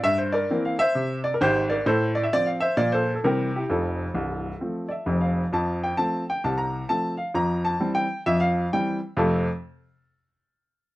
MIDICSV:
0, 0, Header, 1, 2, 480
1, 0, Start_track
1, 0, Key_signature, -1, "major"
1, 0, Tempo, 456969
1, 40, Time_signature, 4, 2, 24, 8
1, 11509, End_track
2, 0, Start_track
2, 0, Title_t, "Upright piano"
2, 0, Program_c, 0, 0
2, 34, Note_on_c, 0, 43, 80
2, 37, Note_on_c, 0, 76, 115
2, 184, Note_off_c, 0, 76, 0
2, 189, Note_on_c, 0, 72, 73
2, 332, Note_off_c, 0, 72, 0
2, 340, Note_on_c, 0, 74, 92
2, 356, Note_on_c, 0, 70, 72
2, 443, Note_off_c, 0, 43, 0
2, 531, Note_on_c, 0, 52, 66
2, 536, Note_on_c, 0, 60, 58
2, 539, Note_on_c, 0, 58, 66
2, 619, Note_off_c, 0, 74, 0
2, 654, Note_off_c, 0, 70, 0
2, 683, Note_on_c, 0, 77, 73
2, 791, Note_off_c, 0, 52, 0
2, 795, Note_off_c, 0, 60, 0
2, 797, Note_off_c, 0, 58, 0
2, 818, Note_off_c, 0, 77, 0
2, 830, Note_on_c, 0, 76, 110
2, 850, Note_on_c, 0, 72, 76
2, 998, Note_on_c, 0, 48, 71
2, 1227, Note_off_c, 0, 76, 0
2, 1276, Note_off_c, 0, 72, 0
2, 1301, Note_on_c, 0, 74, 91
2, 1388, Note_off_c, 0, 74, 0
2, 1404, Note_off_c, 0, 48, 0
2, 1408, Note_on_c, 0, 70, 75
2, 1477, Note_on_c, 0, 44, 92
2, 1481, Note_on_c, 0, 32, 95
2, 1486, Note_on_c, 0, 72, 107
2, 1488, Note_off_c, 0, 70, 0
2, 1499, Note_on_c, 0, 67, 80
2, 1728, Note_off_c, 0, 72, 0
2, 1758, Note_off_c, 0, 67, 0
2, 1781, Note_on_c, 0, 74, 94
2, 1788, Note_on_c, 0, 70, 66
2, 1859, Note_off_c, 0, 44, 0
2, 1861, Note_off_c, 0, 32, 0
2, 1934, Note_off_c, 0, 74, 0
2, 1952, Note_off_c, 0, 70, 0
2, 1953, Note_on_c, 0, 45, 93
2, 1958, Note_on_c, 0, 72, 96
2, 1974, Note_on_c, 0, 69, 71
2, 2203, Note_off_c, 0, 72, 0
2, 2235, Note_off_c, 0, 69, 0
2, 2259, Note_on_c, 0, 74, 89
2, 2346, Note_off_c, 0, 74, 0
2, 2347, Note_on_c, 0, 76, 75
2, 2360, Note_off_c, 0, 45, 0
2, 2437, Note_off_c, 0, 76, 0
2, 2448, Note_on_c, 0, 53, 49
2, 2448, Note_on_c, 0, 60, 66
2, 2449, Note_on_c, 0, 74, 122
2, 2454, Note_on_c, 0, 65, 64
2, 2584, Note_on_c, 0, 77, 73
2, 2586, Note_off_c, 0, 74, 0
2, 2707, Note_off_c, 0, 53, 0
2, 2707, Note_off_c, 0, 60, 0
2, 2712, Note_off_c, 0, 65, 0
2, 2726, Note_off_c, 0, 77, 0
2, 2736, Note_on_c, 0, 76, 98
2, 2751, Note_on_c, 0, 72, 74
2, 2890, Note_off_c, 0, 76, 0
2, 2908, Note_on_c, 0, 46, 80
2, 2910, Note_on_c, 0, 74, 105
2, 2911, Note_on_c, 0, 53, 49
2, 2913, Note_off_c, 0, 72, 0
2, 2913, Note_on_c, 0, 58, 52
2, 2919, Note_on_c, 0, 65, 53
2, 3056, Note_off_c, 0, 74, 0
2, 3070, Note_on_c, 0, 72, 89
2, 3088, Note_on_c, 0, 69, 68
2, 3175, Note_off_c, 0, 53, 0
2, 3176, Note_off_c, 0, 58, 0
2, 3180, Note_off_c, 0, 65, 0
2, 3268, Note_off_c, 0, 72, 0
2, 3290, Note_off_c, 0, 69, 0
2, 3305, Note_on_c, 0, 69, 57
2, 3317, Note_off_c, 0, 46, 0
2, 3395, Note_off_c, 0, 69, 0
2, 3401, Note_on_c, 0, 52, 54
2, 3406, Note_on_c, 0, 48, 83
2, 3406, Note_on_c, 0, 70, 81
2, 3410, Note_on_c, 0, 55, 46
2, 3420, Note_on_c, 0, 60, 42
2, 3424, Note_on_c, 0, 67, 65
2, 3661, Note_off_c, 0, 52, 0
2, 3668, Note_off_c, 0, 55, 0
2, 3671, Note_off_c, 0, 70, 0
2, 3675, Note_off_c, 0, 60, 0
2, 3705, Note_off_c, 0, 67, 0
2, 3739, Note_on_c, 0, 67, 63
2, 3753, Note_on_c, 0, 64, 47
2, 3807, Note_off_c, 0, 48, 0
2, 3863, Note_off_c, 0, 67, 0
2, 3882, Note_off_c, 0, 64, 0
2, 3882, Note_on_c, 0, 41, 72
2, 3887, Note_on_c, 0, 29, 68
2, 3890, Note_on_c, 0, 69, 69
2, 3900, Note_on_c, 0, 65, 50
2, 4261, Note_off_c, 0, 41, 0
2, 4263, Note_off_c, 0, 29, 0
2, 4350, Note_on_c, 0, 24, 63
2, 4355, Note_on_c, 0, 36, 69
2, 4733, Note_off_c, 0, 24, 0
2, 4736, Note_off_c, 0, 36, 0
2, 4843, Note_on_c, 0, 60, 39
2, 4848, Note_on_c, 0, 53, 42
2, 4848, Note_on_c, 0, 57, 40
2, 5103, Note_off_c, 0, 60, 0
2, 5107, Note_off_c, 0, 53, 0
2, 5107, Note_off_c, 0, 57, 0
2, 5132, Note_on_c, 0, 74, 59
2, 5154, Note_off_c, 0, 74, 0
2, 5159, Note_on_c, 0, 76, 52
2, 5313, Note_on_c, 0, 29, 67
2, 5318, Note_on_c, 0, 41, 69
2, 5352, Note_off_c, 0, 69, 0
2, 5414, Note_off_c, 0, 76, 0
2, 5470, Note_on_c, 0, 77, 58
2, 5573, Note_off_c, 0, 65, 0
2, 5695, Note_off_c, 0, 29, 0
2, 5698, Note_off_c, 0, 41, 0
2, 5747, Note_off_c, 0, 77, 0
2, 5803, Note_on_c, 0, 53, 68
2, 5804, Note_on_c, 0, 41, 75
2, 5813, Note_on_c, 0, 81, 75
2, 6074, Note_off_c, 0, 81, 0
2, 6129, Note_on_c, 0, 79, 71
2, 6205, Note_off_c, 0, 53, 0
2, 6206, Note_off_c, 0, 41, 0
2, 6256, Note_off_c, 0, 79, 0
2, 6275, Note_on_c, 0, 53, 46
2, 6275, Note_on_c, 0, 81, 89
2, 6279, Note_on_c, 0, 57, 41
2, 6283, Note_on_c, 0, 60, 58
2, 6538, Note_off_c, 0, 53, 0
2, 6540, Note_off_c, 0, 57, 0
2, 6543, Note_off_c, 0, 60, 0
2, 6544, Note_off_c, 0, 81, 0
2, 6614, Note_on_c, 0, 79, 76
2, 6740, Note_off_c, 0, 79, 0
2, 6766, Note_on_c, 0, 36, 65
2, 6767, Note_on_c, 0, 81, 74
2, 6772, Note_on_c, 0, 48, 62
2, 6904, Note_off_c, 0, 81, 0
2, 6908, Note_on_c, 0, 82, 78
2, 7167, Note_off_c, 0, 36, 0
2, 7171, Note_off_c, 0, 48, 0
2, 7187, Note_off_c, 0, 82, 0
2, 7237, Note_on_c, 0, 53, 42
2, 7239, Note_on_c, 0, 81, 91
2, 7242, Note_on_c, 0, 57, 44
2, 7244, Note_on_c, 0, 60, 41
2, 7483, Note_off_c, 0, 81, 0
2, 7499, Note_off_c, 0, 53, 0
2, 7503, Note_off_c, 0, 57, 0
2, 7504, Note_off_c, 0, 60, 0
2, 7534, Note_on_c, 0, 77, 68
2, 7690, Note_off_c, 0, 77, 0
2, 7713, Note_on_c, 0, 41, 70
2, 7714, Note_on_c, 0, 53, 68
2, 7720, Note_on_c, 0, 82, 90
2, 7989, Note_off_c, 0, 82, 0
2, 8032, Note_on_c, 0, 81, 87
2, 8121, Note_off_c, 0, 41, 0
2, 8121, Note_off_c, 0, 53, 0
2, 8195, Note_on_c, 0, 55, 56
2, 8196, Note_on_c, 0, 52, 50
2, 8199, Note_on_c, 0, 60, 62
2, 8292, Note_off_c, 0, 81, 0
2, 8348, Note_on_c, 0, 79, 89
2, 8459, Note_off_c, 0, 55, 0
2, 8460, Note_off_c, 0, 52, 0
2, 8462, Note_off_c, 0, 60, 0
2, 8629, Note_off_c, 0, 79, 0
2, 8677, Note_on_c, 0, 53, 69
2, 8678, Note_on_c, 0, 76, 100
2, 8680, Note_on_c, 0, 41, 75
2, 8822, Note_off_c, 0, 76, 0
2, 8824, Note_on_c, 0, 77, 90
2, 9085, Note_off_c, 0, 53, 0
2, 9086, Note_off_c, 0, 41, 0
2, 9107, Note_off_c, 0, 77, 0
2, 9170, Note_on_c, 0, 55, 60
2, 9171, Note_on_c, 0, 79, 89
2, 9172, Note_on_c, 0, 52, 59
2, 9182, Note_on_c, 0, 60, 47
2, 9413, Note_off_c, 0, 79, 0
2, 9431, Note_off_c, 0, 55, 0
2, 9432, Note_off_c, 0, 52, 0
2, 9439, Note_off_c, 0, 60, 0
2, 9628, Note_on_c, 0, 41, 87
2, 9631, Note_on_c, 0, 48, 64
2, 9634, Note_on_c, 0, 57, 72
2, 9634, Note_on_c, 0, 60, 71
2, 9639, Note_on_c, 0, 65, 75
2, 9641, Note_on_c, 0, 69, 68
2, 9647, Note_on_c, 0, 81, 56
2, 9939, Note_off_c, 0, 41, 0
2, 9940, Note_off_c, 0, 48, 0
2, 9942, Note_off_c, 0, 57, 0
2, 9942, Note_off_c, 0, 60, 0
2, 9945, Note_off_c, 0, 65, 0
2, 9945, Note_off_c, 0, 69, 0
2, 9949, Note_off_c, 0, 81, 0
2, 11509, End_track
0, 0, End_of_file